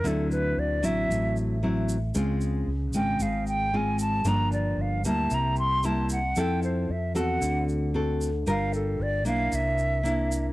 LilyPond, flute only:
\new Staff \with { instrumentName = "Flute" } { \time 4/4 \key d \minor \tempo 4 = 114 a'8 b'8 d''8 e''4 r4. | r4. g''8 f''8 g''8 aes''8 a''8 | bes''8 d''8 f''8 a''8 bes''8 c'''8 a''8 ges''8 | g''8 c''8 e''8 ges''4 r4. |
f''8 a'8 d''8 f''8 e''4.~ e''16 r16 | }